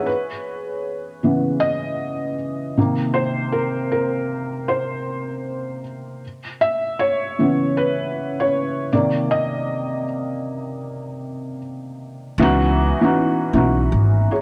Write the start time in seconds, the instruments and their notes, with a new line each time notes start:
Already playing: felt piano G#4 C#5
0.06 felt piano B4
1.23 felt piano C#3 E3 B3
1.60 felt piano D#5
2.77 felt piano C3 D#3 A#3
3.14 felt piano C5
3.52 felt piano A#4
3.92 felt piano A#4
4.68 felt piano C5
6.61 felt piano E5
6.99 felt piano C#5
7.38 felt piano C#3 E3 B3
7.77 felt piano B4
8.40 felt piano C#5
8.93 felt piano C3 D#3 A#3 D5
9.31 felt piano D#5
12.38 upright bass C#2, felt piano E3 B3 C#4 D#4
12.42 felt piano F#4
13.01 felt piano E3 B3 C#4 D#4 F#4
13.53 upright bass B1, felt piano E3 B3 C#4 D#4 F#4
13.92 upright bass G#1
14.31 felt piano G#4 C#5